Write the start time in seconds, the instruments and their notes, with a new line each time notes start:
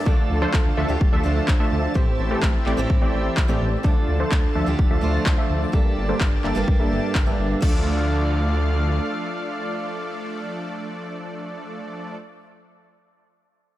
Already playing: analog synth pad D5 A5
0.05 detuned saw bass D2, steel-string acoustic guitar D3 A3 D4 F4 A4, supersaw synth F3 A3 D4 A4 D5, analog synth pad F4 A4, kick
0.30 detuned saw bass D2
0.42 supersaw synth F3 A3 D4 A4 C5
0.54 detuned saw bass D2, kick, clap
0.77 detuned saw bass D2, supersaw synth F3 A3 D4 A4 E5
0.88 detuned saw bass D2, steel-string acoustic guitar D3 A3 D4 F4 G4
1.01 detuned saw bass D1, kick
1.13 detuned saw bass D2, supersaw synth F3 A3 D4 A4 E5
1.23 detuned saw bass D2, steel-string acoustic guitar D3 A3 D4 F4 C5
1.48 detuned saw bass D2, kick, clap
1.60 supersaw synth F3 A3 D4 A4 E5
1.72 detuned saw bass D2
1.94 detuned saw bass A1, steel-string acoustic guitar A2 A3 C4 E4 G4, supersaw synth E3 A3 C4 G4 C5, analog synth pad G4 C5 E5, kick
2.19 detuned saw bass A1
2.31 supersaw synth E3 A3 C4 G4 A4
2.43 detuned saw bass A1, kick, clap
2.66 detuned saw bass A1, supersaw synth E3 A3 C4 G4 D5, clap
2.77 detuned saw bass A1, steel-string acoustic guitar A2 A3 C4 E4 G4
2.90 detuned saw bass A2, kick
3.02 detuned saw bass A1, supersaw synth E3 A3 C4 G4 D5
3.14 detuned saw bass A1
3.37 detuned saw bass A1, kick, clap
3.48 steel-string acoustic guitar A2 A3 C4 E4 G4, supersaw synth E3 A3 C4 G4 D5
3.61 detuned saw bass A1
3.83 detuned saw bass D2, steel-string acoustic guitar D3 A3 D4 F4 A4, supersaw synth F3 A3 D4 A4 D5, analog synth pad F4 A4 D5 A5, kick
4.08 detuned saw bass D2
4.20 supersaw synth F3 A3 D4 A4 C5
4.32 detuned saw bass D2, kick, clap
4.55 detuned saw bass D2, supersaw synth F3 A3 D4 A4 E5
4.66 detuned saw bass D2, steel-string acoustic guitar D3 A3 D4 F4 G4
4.79 detuned saw bass D1, kick
4.91 detuned saw bass D2, supersaw synth F3 A3 D4 A4 E5
5.01 detuned saw bass D2, steel-string acoustic guitar D3 A3 D4 F4 C5
5.26 detuned saw bass D2, kick, clap
5.38 supersaw synth F3 A3 D4 A4 E5
5.50 detuned saw bass D2
5.72 detuned saw bass G1, steel-string acoustic guitar G2 A#3 D4 G4 A4, supersaw synth G3 A#3 D4 A4 D5, analog synth pad A#3 G4 A5, kick
5.97 detuned saw bass G1
6.09 supersaw synth G3 A#3 D4 A4 C5
6.21 detuned saw bass G1, kick, clap
6.44 detuned saw bass G1, supersaw synth G3 A#3 D4 A4 E5, clap
6.55 detuned saw bass G1, steel-string acoustic guitar G2 A#3 D4 G4 A4
6.68 detuned saw bass G1, kick
6.80 detuned saw bass G1, supersaw synth G3 A#3 D4 A4 E5
6.92 detuned saw bass G1
7.15 detuned saw bass G1, kick, clap
7.26 steel-string acoustic guitar G2 A#3 D4 G4, supersaw synth G3 A#3 D4 A4 E5
7.39 detuned saw bass G1
7.61 detuned saw bass D2, supersaw synth F3 A3 D4 A4 D5, steel-string acoustic guitar A3 D4 F4 A4, analog synth pad A3 D4 F4 D5 F5, kick, crash